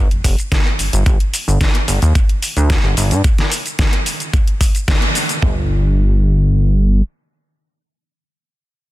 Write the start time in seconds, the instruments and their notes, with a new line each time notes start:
0.11 analog synth bass F1, closed hi-hat
0.24 analog synth bass F1, kick, open hi-hat, shaker
0.39 closed hi-hat, shaker
0.52 kick, snare, closed hi-hat, shaker
0.79 analog synth bass G1, open hi-hat, shaker
0.93 analog synth bass G1, closed hi-hat, shaker
1.06 analog synth bass G1, kick, closed hi-hat, shaker
1.20 closed hi-hat
1.34 open hi-hat, shaker
1.48 analog synth bass G1, shaker
1.61 kick, snare, closed hi-hat, shaker
1.75 closed hi-hat
1.88 analog synth bass G1, open hi-hat, shaker
2.02 analog synth bass D#2, closed hi-hat, shaker
2.15 kick, closed hi-hat, shaker
2.29 closed hi-hat
2.42 open hi-hat, shaker
2.57 analog synth bass D2, closed hi-hat, shaker
2.70 kick, snare, closed hi-hat, shaker
2.84 analog synth bass G1
2.97 analog synth bass G1, open hi-hat, shaker
3.11 analog synth bass G2, closed hi-hat, shaker
3.24 kick, closed hi-hat, shaker
3.38 snare, closed hi-hat
3.52 open hi-hat, shaker
3.66 closed hi-hat, shaker
3.79 kick, snare, closed hi-hat, shaker
3.93 closed hi-hat
4.06 open hi-hat, shaker
4.20 closed hi-hat, shaker
4.33 kick, closed hi-hat, shaker
4.48 closed hi-hat
4.61 kick, open hi-hat, shaker
4.75 closed hi-hat, shaker
4.88 kick, snare, closed hi-hat, shaker
5.02 closed hi-hat
5.15 open hi-hat, shaker
5.29 closed hi-hat, shaker
5.42 analog synth bass G1, kick, floor tom